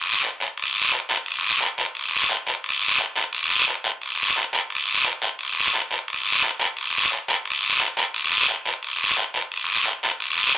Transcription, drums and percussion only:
0.23 short guiro medium
0.40 short guiro medium
0.57 long guiro medium
0.92 short guiro medium
1.09 short guiro medium
1.26 long guiro medium
1.61 short guiro medium
1.78 short guiro medium
1.95 long guiro medium
2.30 short guiro medium
2.47 short guiro medium
2.64 long guiro medium
2.99 short guiro medium
3.16 short guiro medium
3.33 long guiro medium
3.67 short guiro medium
3.84 short guiro medium
4.02 long guiro medium
4.36 short guiro medium
4.53 short guiro medium
4.70 long guiro medium
5.05 short guiro medium
5.22 short guiro medium
5.39 long guiro medium
5.73 short guiro medium
5.91 short guiro medium
6.08 long guiro medium
6.42 short guiro medium
6.59 short guiro medium
6.77 long guiro medium
7.11 short guiro medium
7.28 short guiro medium
7.45 long guiro medium
7.79 short guiro medium
7.97 short guiro medium
8.14 long guiro medium
8.48 short guiro medium
8.66 short guiro medium
8.83 long guiro medium
9.17 short guiro medium
9.34 short guiro medium
9.52 long guiro medium
9.86 short guiro medium
10.03 short guiro medium
10.20 long guiro medium
10.55 short guiro medium

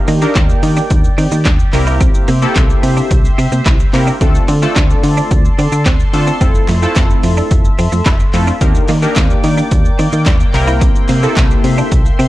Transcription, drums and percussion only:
0.08 open hi-hat medium
0.08 shaker medium
0.22 shaker medium
0.35 kick loud
0.35 snare medium
0.35 clap loud
0.35 closed hi-hat medium
0.35 shaker medium
0.50 shaker soft
0.63 open hi-hat medium
0.63 shaker medium
0.77 shaker medium
0.90 kick loud
0.90 closed hi-hat medium
0.90 shaker medium
1.04 shaker medium
1.18 open hi-hat medium
1.18 shaker medium
1.32 shaker loud
1.45 kick loud
1.45 snare loud
1.45 clap loud
1.45 closed hi-hat medium
1.45 shaker medium
1.59 shaker medium
1.73 clap medium
1.73 open hi-hat medium
1.73 shaker medium
1.87 shaker medium
2.01 kick loud
2.01 closed hi-hat medium
2.01 shaker medium
2.14 shaker medium
2.28 open hi-hat medium
2.28 shaker medium
2.42 shaker medium
2.56 kick loud
2.56 snare medium
2.56 clap loud
2.56 closed hi-hat medium
2.56 shaker medium
2.70 shaker soft
2.83 open hi-hat medium
2.83 shaker medium
2.97 shaker medium
3.11 kick loud
3.11 closed hi-hat medium
3.11 shaker medium
3.25 shaker medium
3.39 open hi-hat medium
3.39 shaker medium
3.52 shaker medium
3.66 kick loud
3.66 snare loud
3.66 clap loud
3.66 closed hi-hat medium
3.66 shaker medium
3.80 shaker medium
3.94 clap medium
3.94 open hi-hat medium
3.94 shaker medium
4.07 shaker medium
4.21 kick loud
4.21 closed hi-hat medium
4.21 shaker medium
4.35 shaker medium
4.48 open hi-hat medium
4.48 shaker medium
4.62 shaker medium
4.76 kick loud
4.76 snare medium
4.76 clap loud
4.76 closed hi-hat medium
4.76 shaker medium
4.90 shaker soft
5.04 open hi-hat medium
5.04 shaker medium
5.17 shaker medium
5.31 kick loud
5.31 closed hi-hat medium
5.31 shaker medium
5.45 shaker medium
5.59 open hi-hat medium
5.59 shaker medium
5.72 shaker loud
5.86 kick loud
5.86 snare loud
5.86 clap loud
5.86 closed hi-hat medium
5.86 shaker medium
6.00 shaker medium
6.14 open hi-hat medium
6.14 shaker medium
6.27 shaker medium
6.41 kick loud
6.41 closed hi-hat medium
6.41 shaker medium
6.55 shaker medium
6.68 clap medium
6.68 open hi-hat medium
6.68 shaker medium
6.82 shaker medium
6.96 kick loud
6.96 snare medium
6.96 clap medium
6.96 clap loud
6.96 closed hi-hat medium
6.96 shaker medium
7.10 shaker soft
7.23 open hi-hat medium
7.23 shaker medium
7.37 shaker medium
7.51 kick loud
7.51 closed hi-hat medium
7.51 shaker medium
7.65 shaker medium
7.79 open hi-hat medium
7.79 shaker medium
7.92 shaker medium
8.06 kick loud
8.06 snare medium
8.06 clap medium
8.06 clap loud
8.06 closed hi-hat medium
8.06 shaker medium
8.20 shaker medium
8.34 clap medium
8.34 open hi-hat medium
8.34 shaker medium
8.47 shaker medium
8.61 kick loud
8.61 closed hi-hat medium
8.61 shaker medium
8.75 shaker medium
8.88 clap medium
8.88 open hi-hat medium
8.88 shaker medium
9.02 shaker medium
9.16 kick loud
9.16 snare medium
9.16 clap medium
9.16 clap loud
9.16 closed hi-hat medium
9.16 shaker medium
9.30 shaker soft
9.44 open hi-hat medium
9.44 shaker medium
9.58 shaker medium
9.71 kick loud
9.71 closed hi-hat medium
9.71 shaker medium
9.85 shaker medium
9.99 open hi-hat medium
9.99 shaker medium
10.12 shaker loud
10.26 kick loud
10.26 snare loud
10.26 clap medium
10.26 clap loud
10.26 closed hi-hat medium
10.26 shaker medium
10.40 shaker medium
10.54 clap medium
10.54 open hi-hat medium
10.54 shaker medium
10.67 shaker medium
10.81 kick loud
10.81 closed hi-hat medium
10.81 shaker medium
10.95 shaker medium
11.09 clap medium
11.09 open hi-hat medium
11.09 shaker medium
11.23 shaker medium
11.36 kick loud
11.36 snare medium
11.36 clap medium
11.36 clap loud
11.36 closed hi-hat medium
11.36 shaker medium
11.51 shaker soft
11.64 open hi-hat medium
11.64 shaker medium
11.78 shaker medium
11.92 kick loud
11.92 closed hi-hat medium
11.92 shaker medium
12.06 shaker medium
12.19 open hi-hat medium
12.19 shaker medium

